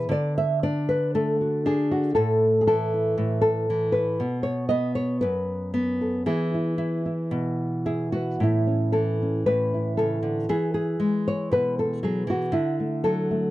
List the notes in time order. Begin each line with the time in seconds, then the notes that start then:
Already playing: E3 G#4 B4
0.09 D3 D5
0.38 E5
0.63 D4 D5
0.89 B4
1.15 A3 A4
1.41 F#4
1.66 D4 G#4
1.91 F#4
2.15 A2 A4
2.61 G#4
2.67 E3 A4
2.94 E4
3.18 A2
3.41 A4
3.70 E3
3.92 B4
4.20 B2
4.43 C#5
4.69 B3 D#5
4.95 C#5
5.21 F#2 B4
5.74 B3
6.01 A4
6.26 E3 E4 G#4
6.54 E4
6.78 E4
7.06 E4
7.31 B2
7.86 E4 G#4
8.12 F#4 B4
8.40 A2 E4
8.67 C#4
8.92 E3 A4
9.22 C#4
9.46 A2 B4
9.74 E4
9.97 C#3 A4
10.23 D3
10.49 E3 G#4
10.74 G#4
11.00 G#3
11.28 C#5
11.51 B2 B4
11.79 A4
12.03 F#3 G#4
12.27 E3 F#4
12.52 D3 E4
12.80 A3
13.04 F#3 A4
13.31 A3